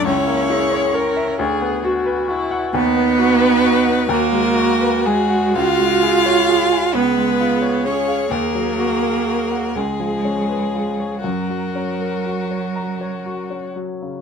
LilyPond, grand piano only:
\new Staff \with { instrumentName = "Grand piano" } { \time 6/8 \key b \dorian \tempo 4. = 43 cis,16 ais16 e'16 cis''16 ais'16 e''16 d,16 b16 fis'16 b'16 fis'16 fis''16 | \key fis \major dis,16 b16 fis'16 b'16 fis'16 fis''16 dis,16 gis16 fis'16 b'16 gis'16 fis''16 | cis,16 gis16 gis'16 cis''16 gis'16 gis''16 cis,16 gis16 eis'16 cis''16 gis'16 eis''16 | dis,16 fis16 fis'16 ais'16 fis'16 fis''16 cis,16 eis16 cis'16 b'16 eis'16 cis''16 |
fis,16 fis16 cis'16 ais'16 fis'16 cis''16 ais''16 cis''16 fis'16 cis'16 fis16 cis16 | }